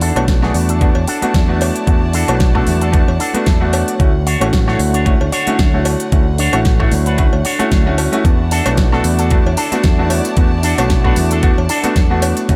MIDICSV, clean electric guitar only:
0, 0, Header, 1, 2, 480
1, 0, Start_track
1, 0, Tempo, 530973
1, 1695, Time_signature, 4, 2, 24, 8
1, 11353, End_track
2, 0, Start_track
2, 0, Title_t, "Clean electric guitar"
2, 0, Program_c, 0, 27
2, 10, Note_on_c, 0, 62, 101
2, 15, Note_on_c, 0, 66, 85
2, 16, Note_on_c, 0, 69, 117
2, 199, Note_off_c, 0, 62, 0
2, 200, Note_off_c, 0, 66, 0
2, 202, Note_off_c, 0, 69, 0
2, 385, Note_on_c, 0, 62, 80
2, 393, Note_on_c, 0, 68, 93
2, 394, Note_on_c, 0, 66, 63
2, 495, Note_off_c, 0, 62, 0
2, 497, Note_off_c, 0, 66, 0
2, 498, Note_off_c, 0, 68, 0
2, 625, Note_on_c, 0, 62, 89
2, 629, Note_on_c, 0, 66, 65
2, 630, Note_on_c, 0, 69, 90
2, 801, Note_off_c, 0, 62, 0
2, 801, Note_off_c, 0, 66, 0
2, 802, Note_off_c, 0, 69, 0
2, 974, Note_on_c, 0, 69, 112
2, 975, Note_on_c, 0, 66, 95
2, 977, Note_on_c, 0, 62, 108
2, 1454, Note_off_c, 0, 62, 0
2, 1454, Note_off_c, 0, 66, 0
2, 1455, Note_off_c, 0, 69, 0
2, 1931, Note_on_c, 0, 62, 113
2, 1936, Note_on_c, 0, 66, 81
2, 1937, Note_on_c, 0, 69, 118
2, 2120, Note_off_c, 0, 62, 0
2, 2121, Note_off_c, 0, 66, 0
2, 2123, Note_off_c, 0, 69, 0
2, 2304, Note_on_c, 0, 62, 76
2, 2312, Note_on_c, 0, 66, 65
2, 2312, Note_on_c, 0, 69, 97
2, 2414, Note_off_c, 0, 62, 0
2, 2416, Note_off_c, 0, 66, 0
2, 2417, Note_off_c, 0, 69, 0
2, 2546, Note_on_c, 0, 69, 87
2, 2547, Note_on_c, 0, 66, 70
2, 2550, Note_on_c, 0, 62, 68
2, 2720, Note_off_c, 0, 62, 0
2, 2720, Note_off_c, 0, 66, 0
2, 2722, Note_off_c, 0, 69, 0
2, 2890, Note_on_c, 0, 62, 99
2, 2895, Note_on_c, 0, 69, 121
2, 2896, Note_on_c, 0, 66, 86
2, 3373, Note_off_c, 0, 62, 0
2, 3374, Note_off_c, 0, 66, 0
2, 3375, Note_off_c, 0, 69, 0
2, 3855, Note_on_c, 0, 66, 92
2, 3855, Note_on_c, 0, 73, 114
2, 3858, Note_on_c, 0, 62, 89
2, 4041, Note_off_c, 0, 62, 0
2, 4041, Note_off_c, 0, 66, 0
2, 4042, Note_off_c, 0, 73, 0
2, 4226, Note_on_c, 0, 73, 93
2, 4228, Note_on_c, 0, 66, 74
2, 4230, Note_on_c, 0, 62, 74
2, 4334, Note_off_c, 0, 62, 0
2, 4334, Note_off_c, 0, 66, 0
2, 4335, Note_off_c, 0, 73, 0
2, 4462, Note_on_c, 0, 62, 82
2, 4469, Note_on_c, 0, 66, 71
2, 4469, Note_on_c, 0, 73, 89
2, 4639, Note_off_c, 0, 62, 0
2, 4640, Note_off_c, 0, 66, 0
2, 4642, Note_off_c, 0, 73, 0
2, 4807, Note_on_c, 0, 62, 107
2, 4812, Note_on_c, 0, 66, 93
2, 4813, Note_on_c, 0, 73, 120
2, 5292, Note_off_c, 0, 62, 0
2, 5292, Note_off_c, 0, 66, 0
2, 5294, Note_off_c, 0, 73, 0
2, 5775, Note_on_c, 0, 62, 109
2, 5779, Note_on_c, 0, 66, 100
2, 5783, Note_on_c, 0, 73, 102
2, 5961, Note_off_c, 0, 62, 0
2, 5964, Note_off_c, 0, 66, 0
2, 5964, Note_off_c, 0, 73, 0
2, 6144, Note_on_c, 0, 62, 81
2, 6149, Note_on_c, 0, 73, 90
2, 6150, Note_on_c, 0, 66, 74
2, 6254, Note_off_c, 0, 62, 0
2, 6255, Note_off_c, 0, 66, 0
2, 6256, Note_off_c, 0, 73, 0
2, 6384, Note_on_c, 0, 62, 78
2, 6390, Note_on_c, 0, 71, 93
2, 6391, Note_on_c, 0, 66, 69
2, 6560, Note_off_c, 0, 62, 0
2, 6561, Note_off_c, 0, 66, 0
2, 6563, Note_off_c, 0, 71, 0
2, 6734, Note_on_c, 0, 73, 110
2, 6736, Note_on_c, 0, 66, 94
2, 6737, Note_on_c, 0, 62, 100
2, 7214, Note_off_c, 0, 62, 0
2, 7215, Note_off_c, 0, 66, 0
2, 7215, Note_off_c, 0, 73, 0
2, 7697, Note_on_c, 0, 66, 91
2, 7697, Note_on_c, 0, 69, 126
2, 7701, Note_on_c, 0, 62, 89
2, 7882, Note_off_c, 0, 62, 0
2, 7882, Note_off_c, 0, 66, 0
2, 7883, Note_off_c, 0, 69, 0
2, 8068, Note_on_c, 0, 69, 97
2, 8069, Note_on_c, 0, 66, 73
2, 8073, Note_on_c, 0, 62, 74
2, 8175, Note_off_c, 0, 62, 0
2, 8176, Note_off_c, 0, 66, 0
2, 8177, Note_off_c, 0, 69, 0
2, 8309, Note_on_c, 0, 69, 94
2, 8312, Note_on_c, 0, 66, 73
2, 8313, Note_on_c, 0, 62, 69
2, 8482, Note_off_c, 0, 62, 0
2, 8482, Note_off_c, 0, 66, 0
2, 8482, Note_off_c, 0, 69, 0
2, 8654, Note_on_c, 0, 69, 123
2, 8657, Note_on_c, 0, 66, 98
2, 8660, Note_on_c, 0, 62, 97
2, 9135, Note_off_c, 0, 62, 0
2, 9136, Note_off_c, 0, 66, 0
2, 9136, Note_off_c, 0, 69, 0
2, 9611, Note_on_c, 0, 62, 112
2, 9613, Note_on_c, 0, 66, 99
2, 9620, Note_on_c, 0, 69, 93
2, 9799, Note_off_c, 0, 62, 0
2, 9801, Note_off_c, 0, 66, 0
2, 9803, Note_off_c, 0, 69, 0
2, 9986, Note_on_c, 0, 62, 85
2, 9991, Note_on_c, 0, 66, 65
2, 9992, Note_on_c, 0, 71, 92
2, 10095, Note_off_c, 0, 62, 0
2, 10095, Note_off_c, 0, 66, 0
2, 10098, Note_off_c, 0, 71, 0
2, 10227, Note_on_c, 0, 62, 82
2, 10232, Note_on_c, 0, 66, 69
2, 10232, Note_on_c, 0, 69, 92
2, 10402, Note_off_c, 0, 62, 0
2, 10402, Note_off_c, 0, 66, 0
2, 10404, Note_off_c, 0, 69, 0
2, 10572, Note_on_c, 0, 69, 119
2, 10573, Note_on_c, 0, 66, 91
2, 10576, Note_on_c, 0, 62, 104
2, 11053, Note_off_c, 0, 62, 0
2, 11054, Note_off_c, 0, 66, 0
2, 11055, Note_off_c, 0, 69, 0
2, 11353, End_track
0, 0, End_of_file